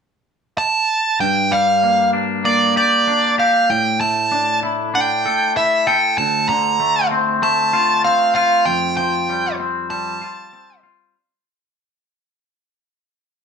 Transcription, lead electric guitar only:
0.58 1.20 A5 medium
1.20 1.52 G5 medium
1.52 2.10 F5 soft
2.45 2.74 D5 soft
2.77 3.35 D5 soft
3.39 3.71 F5 medium
3.70 4.00 G5 medium
4.01 4.59 A5 medium
4.95 5.53 G5 soft
5.57 5.88 E5 soft
5.87 6.18 G5 medium
6.18 6.48 A5 medium
6.49 7.07 A#5 medium
7.43 8.01 A5 medium
8.04 8.33 F5 medium
8.35 8.67 F5 medium
8.65 8.96 G5 medium
8.97 9.55 G5 soft
9.90 10.79 A5 medium

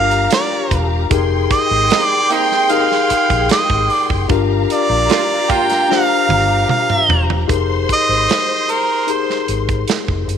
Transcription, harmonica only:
0.00 0.32 F5 loud
0.34 0.88 D5 medium
1.52 2.04 D#5 loud
2.04 2.32 D5 loud
2.31 2.72 G5 loud
2.71 3.50 F5 loud
3.52 3.91 D#5 medium
3.91 4.07 D5 medium
4.72 5.53 D5 loud
5.51 5.92 G5 loud
5.91 6.69 F5 loud
6.70 7.25 F5 medium
7.92 8.72 D#5 loud
8.70 9.12 A#4 medium
9.11 9.49 C5 medium

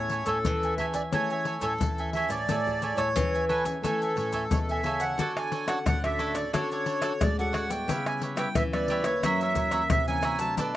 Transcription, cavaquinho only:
0.00 0.10 C#5 medium
0.00 0.11 E5 medium
0.00 0.11 G#5 medium
0.11 0.26 A4 soft
0.11 0.27 C#5 medium
0.11 0.27 E5 medium
0.11 0.27 G#5 medium
0.27 0.37 A4 medium
0.27 0.37 C#5 medium
0.27 0.38 E5 medium
0.27 0.38 G#5 medium
0.64 0.78 C#5 soft
0.64 0.79 E5 soft
0.64 0.79 G#5 soft
0.79 0.95 A4 medium
0.79 0.95 C#5 medium
0.79 0.95 E5 medium
0.79 0.93 G#5 medium
0.95 1.12 C#5 soft
0.95 1.12 E5 soft
0.95 1.11 G#5 soft
1.13 1.29 A4 medium
1.13 1.29 C#5 medium
1.13 1.29 E5 medium
1.13 1.30 G#5 medium
1.31 1.46 C#5 soft
1.31 1.46 E5 soft
1.31 1.46 G#5 soft
1.46 1.61 A4 soft
1.46 1.61 C#5 soft
1.46 1.61 E5 soft
1.46 1.62 G#5 medium
1.62 1.72 A4 medium
1.62 1.72 C#5 medium
1.62 1.72 E5 medium
1.62 1.73 G#5 medium
1.99 2.15 C#5 soft
1.99 2.14 E5 soft
1.99 2.14 G#5 soft
2.15 2.47 A4 medium
2.15 2.48 C#5 medium
2.15 2.48 E5 medium
2.15 2.48 G#5 medium
2.50 2.82 A4 medium
2.50 2.82 E5 medium
2.50 2.83 G#5 medium
2.83 2.97 A4 soft
2.83 2.97 C#5 soft
2.83 2.97 E5 medium
2.83 2.97 G#5 medium
2.98 3.08 A4 medium
2.98 3.08 C#5 medium
2.98 3.08 E5 medium
2.98 3.08 G#5 medium
3.34 3.48 C#5 soft
3.34 3.49 E5 soft
3.34 3.49 G#5 soft
3.49 3.65 A4 medium
3.49 3.65 C#5 medium
3.49 3.64 E5 medium
3.49 3.64 G#5 medium
3.65 3.82 C#5 soft
3.65 3.82 E5 soft
3.65 3.82 G#5 soft
3.83 3.99 A4 medium
3.83 4.00 C#5 medium
3.83 4.00 E5 medium
3.83 4.00 G#5 medium
4.03 4.16 C#5 soft
4.03 4.17 E5 soft
4.03 4.17 G#5 soft
4.17 4.32 A4 soft
4.17 4.33 C#5 soft
4.17 4.33 E5 soft
4.17 4.33 G#5 soft
4.33 4.43 A4 medium
4.33 4.43 C#5 medium
4.33 4.43 E5 medium
4.33 4.43 G#5 medium
4.71 4.85 C#5 soft
4.71 4.85 E5 soft
4.71 4.85 G#5 soft
4.86 5.18 A4 medium
4.86 5.18 C#5 medium
4.86 5.18 E5 medium
4.86 5.19 G#5 medium
5.20 5.50 F#4 medium
5.20 5.51 A4 medium
5.20 5.52 C#5 medium
5.20 5.52 D5 medium
5.52 5.67 F#4 medium
5.52 5.67 A4 medium
5.52 5.68 C#5 medium
5.52 5.68 D5 medium
5.68 5.78 F#4 medium
5.68 5.78 A4 medium
5.68 5.78 C#5 medium
5.68 5.78 D5 medium
6.04 6.18 A4 soft
6.04 6.19 C#5 soft
6.04 6.19 D5 medium
6.19 6.35 F#4 medium
6.19 6.35 A4 medium
6.19 6.34 C#5 medium
6.19 6.33 D5 medium
6.34 6.52 A4 soft
6.34 6.52 C#5 soft
6.34 6.51 D5 medium
6.53 6.69 F#4 medium
6.53 6.69 A4 medium
6.53 6.69 C#5 medium
6.53 6.70 D5 medium
6.72 6.86 A4 soft
6.72 6.86 C#5 soft
6.72 6.87 D5 soft
6.86 7.01 F#4 soft
6.86 7.01 A4 soft
6.86 7.02 C#5 soft
6.86 7.02 D5 medium
7.02 7.12 F#4 medium
7.02 7.12 A4 medium
7.02 7.13 C#5 medium
7.02 7.13 D5 medium
7.39 7.55 A4 soft
7.39 7.53 C#5 soft
7.39 7.54 D5 soft
7.53 7.86 F#4 medium
7.53 7.87 C#5 medium
7.53 7.87 D5 medium
7.89 8.21 G4 medium
7.89 8.21 B4 medium
7.89 8.21 C#5 medium
7.89 8.22 E5 medium
8.22 8.37 G4 soft
8.22 8.37 B4 soft
8.22 8.38 C#5 medium
8.22 8.38 E5 medium
8.38 8.47 G4 medium
8.38 8.48 B4 medium
8.38 8.48 C#5 medium
8.38 8.48 E5 medium
8.74 8.89 B4 soft
8.74 8.89 C#5 soft
8.74 8.89 E5 soft
8.90 9.05 G4 medium
8.90 9.05 B4 medium
8.90 9.05 C#5 medium
8.90 9.05 E5 medium
9.06 9.22 B4 soft
9.06 9.22 C#5 soft
9.06 9.21 E5 medium
9.24 9.39 F#4 medium
9.24 9.40 A#4 medium
9.24 9.40 C#5 medium
9.24 9.40 E5 medium
9.42 9.56 A#4 soft
9.42 9.56 C#5 soft
9.42 9.57 E5 medium
9.57 9.71 F#4 soft
9.57 9.71 A#4 soft
9.57 9.71 C#5 medium
9.57 9.72 E5 medium
9.72 9.82 F#4 medium
9.72 9.82 A#4 medium
9.72 9.82 C#5 medium
9.72 9.82 E5 medium
10.08 10.23 A#4 soft
10.08 10.23 C#5 soft
10.08 10.23 E5 soft
10.23 10.56 F#4 medium
10.23 10.56 A#4 medium
10.23 10.56 C#5 medium
10.23 10.57 E5 medium
10.58 10.77 D4 medium
10.58 10.77 A4 medium
10.58 10.77 B4 medium
10.58 10.77 D5 medium

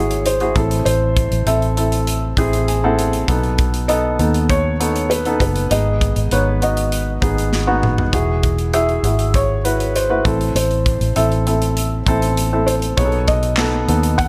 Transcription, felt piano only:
0.00 0.27 C#5 medium
0.26 0.84 C5 medium
0.85 1.48 C5 medium
1.47 2.64 E5 medium
3.88 4.45 D#5 medium
4.50 5.12 C#5 medium
5.10 5.40 B4 medium
5.41 5.69 B4 medium
5.71 6.33 D#5 medium
6.33 6.60 C#5 medium
6.63 7.79 D#5 medium
8.74 9.36 E5 medium
9.35 9.97 C#5 medium
9.96 10.52 C5 medium
10.56 11.12 C5 medium
11.16 12.33 E5 medium
12.67 12.73 C5 medium
12.97 13.29 C#5 medium
13.28 14.15 D#5 medium
14.18 14.28 F#5 medium

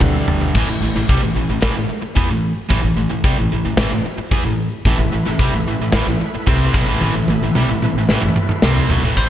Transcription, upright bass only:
0.01 0.20 D2 medium
0.29 0.47 G1 medium
0.55 0.67 A1 medium
0.67 0.80 A1 medium
0.81 0.94 A1 medium
0.95 1.08 A1 medium
1.09 1.22 C2 medium
1.22 1.34 A1 medium
1.35 1.48 A1 medium
1.48 1.62 A1 medium
1.62 1.75 A1 medium
1.75 1.89 A1 medium
1.89 muted upright bass stroke soft
2.02 muted upright bass stroke soft
2.16 2.28 E2 medium
2.28 2.55 A1 medium
2.71 2.82 A1 medium
2.83 2.96 A1 medium
2.97 3.10 A1 medium
3.11 3.24 A1 medium
3.24 3.37 C2 medium
3.38 3.51 A1 medium
3.52 3.64 A1 medium
3.65 3.77 A1 medium
3.77 3.90 A1 medium
3.91 4.04 A1 medium
4.04 muted upright bass stroke soft
4.18 muted upright bass stroke soft
4.32 4.43 E2 loud
4.44 4.70 A1 medium
4.85 4.98 A1 loud
4.98 5.12 A1 medium
5.13 5.26 A1 medium
5.26 5.39 A1 medium
5.39 5.52 C2 medium
5.53 5.64 A1 medium
5.65 5.78 A1 medium
5.80 5.93 A1 medium
5.93 6.06 A1 medium
6.06 6.20 A1 medium
6.21 muted upright bass stroke soft
6.34 muted upright bass stroke soft
6.47 6.73 C2 loud
6.75 6.87 B1 loud
6.87 7.00 A1 medium
7.01 7.14 A1 loud
7.15 7.26 A1 medium
7.27 7.40 A1 medium
7.41 7.54 A1 medium
7.56 7.68 C2 medium
7.68 7.79 A1 medium
7.80 7.93 A1 medium
7.94 8.07 A1 medium
8.09 8.21 A1 medium
8.22 8.35 A1 medium
8.36 muted upright bass stroke soft
8.48 muted upright bass stroke soft
8.62 8.88 C2 loud
8.90 9.02 B1 medium
9.02 9.15 A1 medium
9.17 9.29 A1 medium

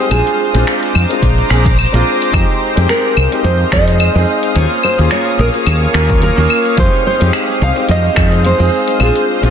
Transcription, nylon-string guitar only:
0.00 0.11 G4 medium
0.12 1.19 G#4 medium
2.90 3.44 A#4 medium
3.45 3.73 C5 loud
3.73 4.24 D#5 medium
4.57 4.84 C#5 loud
4.84 5.12 C5 medium
5.12 5.40 C#5 medium
5.40 5.48 A#4 medium
5.68 6.22 A#4 medium
6.23 6.74 A#4 medium
6.80 7.05 C5 loud
7.07 7.62 C5 loud
7.63 7.88 F5 loud
7.91 8.46 D#5 loud
8.46 9.03 C5 loud
9.02 9.50 G#4 medium

